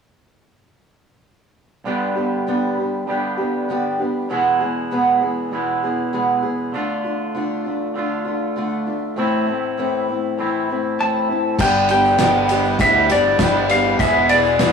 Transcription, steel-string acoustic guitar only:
1.85 2.16 G2 medium
1.85 2.16 D3 medium
1.85 2.16 G3 medium
1.85 2.16 B3 medium
1.85 2.16 D4 medium
1.85 2.14 G4 medium
2.15 2.47 G3 soft
2.15 2.47 B3 soft
2.15 2.47 D4 soft
2.15 2.46 G4 soft
2.47 2.77 G2 medium
2.47 2.78 D3 medium
2.47 2.78 G3 medium
2.47 2.78 B3 medium
2.47 2.77 D4 medium
2.47 2.76 G4 medium
2.77 3.06 G3 soft
2.77 3.08 B3 soft
2.77 3.08 D4 soft
2.77 3.08 G4 soft
3.07 3.38 G3 soft
3.07 3.39 B3 soft
3.07 3.38 D4 soft
3.07 3.36 G4 medium
3.37 3.69 G3 soft
3.37 3.69 B3 soft
3.37 3.69 D4 soft
3.37 3.69 G4 soft
3.69 3.99 G2 medium
3.69 4.00 D3 medium
3.69 4.00 G3 medium
3.69 4.00 B3 medium
3.69 3.99 D4 medium
3.69 3.98 G4 medium
3.99 4.30 G3 soft
3.99 4.30 B3 soft
3.99 4.30 D4 soft
3.99 4.30 G4 soft
4.29 4.60 E2 medium
4.29 4.60 B2 medium
4.29 4.61 E3 medium
4.29 4.61 G#3 medium
4.29 4.60 B3 medium
4.29 4.59 G#4 medium
4.60 4.91 E3 soft
4.60 4.91 G#3 soft
4.60 4.92 B3 soft
4.60 4.91 G#4 soft
4.91 5.22 E2 medium
4.91 5.22 B2 medium
4.91 5.22 E3 medium
4.91 5.22 G#3 medium
4.91 5.20 B3 medium
4.91 5.19 G#4 medium
5.20 5.50 E3 soft
5.20 5.51 G#3 soft
5.20 5.52 B3 soft
5.20 5.51 G#4 soft
5.51 5.82 E3 soft
5.51 5.83 G#3 medium
5.51 5.83 B3 medium
5.51 5.82 G#4 medium
5.83 6.12 E3 soft
5.83 6.13 G#3 soft
5.83 6.14 B3 soft
5.83 6.13 G#4 soft
6.13 6.44 E2 medium
6.13 6.44 B2 medium
6.13 6.44 E3 medium
6.13 6.44 G#3 medium
6.13 6.43 B3 medium
6.13 6.41 G#4 medium
6.43 6.73 E3 soft
6.43 6.74 G#3 soft
6.43 6.74 B3 soft
6.43 6.74 G#4 medium
6.74 7.04 D3 medium
6.74 7.05 A3 medium
6.74 7.04 D4 medium
6.74 7.03 F4 medium
7.04 7.35 A3 soft
7.04 7.36 D4 soft
7.04 7.35 F4 medium
7.35 7.65 D3 medium
7.35 7.66 A3 medium
7.35 7.65 D4 medium
7.35 7.63 F4 medium
7.65 7.95 A3 soft
7.65 7.96 D4 soft
7.65 7.95 F4 soft
7.95 8.26 D3 medium
7.95 8.26 A3 medium
7.95 8.26 D4 medium
7.95 8.23 F4 medium
8.25 8.56 A3 soft
8.25 8.57 D4 soft
8.25 8.56 F4 medium
8.56 8.87 D3 medium
8.56 8.87 A3 medium
8.56 8.87 D4 medium
8.56 8.85 F4 medium
8.87 9.16 A3 soft
8.87 9.18 D4 soft
8.87 9.17 F4 soft
9.16 9.47 A2 medium
9.16 9.48 E3 medium
9.16 9.48 A3 medium
9.16 9.48 C4 medium
9.16 9.45 E4 medium
9.47 9.78 A3 soft
9.47 9.79 C4 soft
9.47 9.77 E4 medium
9.77 10.08 A2 medium
9.77 10.09 E3 medium
9.77 10.09 A3 medium
9.77 10.08 C4 medium
9.77 10.07 E4 medium
10.08 10.38 A3 soft
10.08 10.39 C4 soft
10.08 10.38 E4 soft
10.38 10.69 E3 medium
10.38 10.69 A3 medium
10.38 10.70 C4 medium
10.38 10.68 E4 medium
10.69 10.99 A3 soft
10.69 10.99 C4 soft
10.69 10.99 E4 soft
10.99 11.29 A2 medium
10.99 11.29 E3 medium
10.99 11.30 A3 medium
10.99 11.29 C4 medium
10.99 11.28 E4 medium
11.29 11.61 A3 soft
11.29 11.60 C4 soft
11.29 11.59 E4 medium
11.60 11.89 G2 medium
11.60 11.90 D3 medium
11.60 11.90 G3 medium
11.60 11.90 B3 medium
11.60 11.90 D4 medium
11.60 11.89 G4 medium
11.90 12.18 G3 soft
11.90 12.19 B3 soft
11.90 12.20 D4 medium
11.90 12.20 G4 medium
12.19 12.49 G3 medium
12.19 12.50 B3 medium
12.19 12.51 D4 medium
12.19 12.50 G4 medium
12.51 12.80 G3 soft
12.51 12.81 B3 soft
12.51 12.81 D4 soft
12.51 12.80 G4 medium
12.80 13.10 G2 medium
12.80 13.10 D3 medium
12.80 13.10 G3 medium
12.80 13.11 B3 medium
12.80 13.10 D4 medium
12.80 13.09 G4 medium
13.10 13.39 G3 soft
13.10 13.40 B3 soft
13.10 13.40 D4 medium
13.10 13.40 G4 medium
13.40 13.70 G3 medium
13.40 13.70 B3 medium
13.40 13.70 D4 medium
13.40 13.69 G4 medium
13.70 14.00 G3 soft
13.70 14.00 B3 soft
13.70 14.00 D4 soft
13.70 14.00 G4 medium
14.00 14.29 E2 medium
14.00 14.30 B2 medium
14.00 14.30 E3 medium
14.00 14.30 G#3 medium
14.00 14.30 B3 medium
14.00 14.29 G#4 medium
14.30 14.58 E3 soft
14.30 14.60 G#3 medium
14.30 14.60 B3 medium
14.30 14.60 G#4 medium
14.60 14.72 E3 medium
14.60 14.72 G#3 medium
14.60 14.72 B3 medium
14.60 14.72 G#4 medium

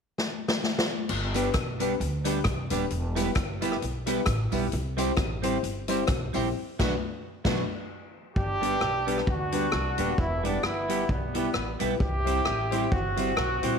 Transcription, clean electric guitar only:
1.34 1.48 G3 medium
1.34 1.48 B3 medium
1.34 1.49 D4 medium
1.34 1.49 G4 medium
1.80 1.93 G3 medium
1.80 1.94 B3 medium
1.80 1.94 D4 medium
1.80 1.94 G4 medium
2.00 muted clean electric guitar stroke soft
2.25 2.39 G3 medium
2.25 2.39 B3 medium
2.25 2.39 D4 medium
2.25 2.39 G4 medium
2.71 2.84 G3 medium
2.71 2.85 B3 medium
2.71 2.85 D4 medium
2.71 2.85 G4 loud
3.15 3.29 G3 medium
3.15 3.30 B3 medium
3.15 3.30 E4 medium
3.15 3.30 G4 medium
3.61 3.75 G3 medium
3.61 3.75 B3 medium
3.61 3.76 E4 medium
3.61 3.76 G4 medium
3.81 muted clean electric guitar stroke soft
4.06 4.20 G3 medium
4.06 4.21 B3 medium
4.06 4.21 E4 medium
4.06 4.21 G4 medium
4.52 4.66 G3 medium
4.52 4.66 B3 medium
4.52 4.66 E4 medium
4.52 4.67 G4 medium
4.97 5.11 G3 medium
4.97 5.11 C4 medium
4.97 5.12 E4 loud
4.97 5.12 G4 medium
5.42 5.56 G3 medium
5.42 5.57 C4 loud
5.42 5.57 E4 medium
5.42 5.57 G4 loud
5.62 muted clean electric guitar stroke soft
5.88 6.02 G3 medium
5.88 6.03 C4 medium
5.88 6.03 E4 loud
5.88 6.03 G4 medium
6.33 6.47 G3 medium
6.33 6.48 C4 medium
6.33 6.48 E4 medium
6.33 6.48 G4 loud
6.79 6.93 F#3 loud
6.79 6.93 B3 loud
6.79 6.94 D4 loud
6.79 6.94 F#4 loud
7.45 7.62 F#3 loud
7.45 7.63 B3 loud
7.45 7.63 D4 loud
7.45 7.63 F#4 loud
8.61 8.75 G3 medium
8.61 8.75 B3 medium
8.61 8.76 D4 medium
8.61 8.76 G4 medium
9.07 9.21 G3 medium
9.07 9.21 B3 medium
9.07 9.21 D4 medium
9.07 9.22 G4 medium
9.27 muted clean electric guitar stroke soft
9.52 9.66 G3 medium
9.52 9.66 B3 medium
9.52 9.67 D4 medium
9.52 9.67 G4 medium
9.98 10.12 G3 medium
9.98 10.12 B3 medium
9.98 10.12 D4 medium
9.98 10.13 G4 medium
10.43 10.57 G3 medium
10.43 10.58 B3 medium
10.43 10.58 E4 medium
10.43 10.58 G4 medium
10.89 11.03 G3 medium
10.89 11.03 B3 medium
10.89 11.03 E4 medium
10.89 11.04 G4 loud
11.09 muted clean electric guitar stroke soft
11.34 11.48 G3 medium
11.34 11.48 B3 medium
11.34 11.49 E4 medium
11.34 11.49 G4 medium
11.79 11.94 G3 medium
11.79 11.94 B3 medium
11.79 11.94 E4 medium
11.79 11.95 G4 medium
12.26 12.40 G3 medium
12.26 12.40 C4 medium
12.26 12.40 E4 medium
12.26 12.41 G4 medium
12.72 12.85 G3 medium
12.72 12.86 C4 medium
12.72 12.86 E4 medium
12.72 12.86 G4 loud
12.93 muted clean electric guitar stroke soft
13.17 13.31 G3 medium
13.17 13.31 C4 medium
13.17 13.31 E4 medium
13.17 13.32 G4 medium
13.63 13.77 G3 medium
13.63 13.77 C4 medium
13.63 13.77 E4 medium
13.63 13.78 G4 medium

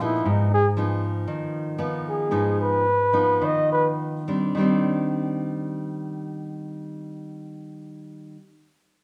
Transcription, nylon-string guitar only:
0.00 0.24 A#2 medium
0.00 0.47 F3 medium
0.00 0.47 B3 medium
0.00 0.47 D#4 medium
0.25 1.25 G#2 medium
0.77 1.75 F3 medium
0.77 1.76 B3 soft
0.77 1.76 D#4 medium
1.27 2.29 D#3 medium
1.78 2.27 F3 medium
1.78 2.27 B3 medium
1.78 2.28 D#4 medium
2.31 3.37 G#2 medium
2.31 2.85 F3 medium
2.31 2.85 B3 medium
2.31 2.85 D#4 medium
3.13 4.22 F3 soft
3.13 4.22 B3 soft
3.13 4.22 D#4 medium
3.41 4.53 D#3 medium
4.28 4.56 G3 soft
4.28 4.57 C4 soft
4.28 4.59 D4 soft
4.55 8.36 D#3 medium
4.55 8.38 G3 medium
4.55 8.40 C4 medium
4.60 8.42 D4 medium

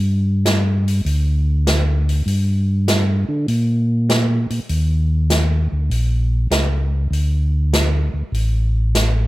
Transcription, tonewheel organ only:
0.00 1.01 G2 medium
1.05 2.23 D2 medium
2.26 3.25 G2 medium
3.29 3.47 D3 medium
3.48 4.47 A#2 medium
4.50 4.60 A#2 soft
4.69 5.68 D#2 medium
5.72 5.90 D2 medium
5.90 6.47 A#1 medium
6.51 7.08 C#2 medium
7.11 8.10 D2 medium
8.14 8.23 D2 soft
8.32 9.27 A1 medium

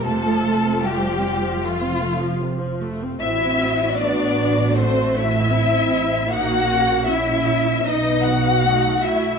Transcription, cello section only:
0.05 0.82 A3 medium
0.84 1.62 G3 medium
1.63 2.41 F3 medium
3.20 3.94 E4 medium
3.98 4.76 D4 medium
4.76 5.15 C4 medium
5.15 6.31 E4 medium
6.31 7.09 F#4 loud
7.08 7.87 E4 loud
7.86 8.25 D#4 medium
8.25 9.04 F#4 loud
9.04 9.39 E4 medium

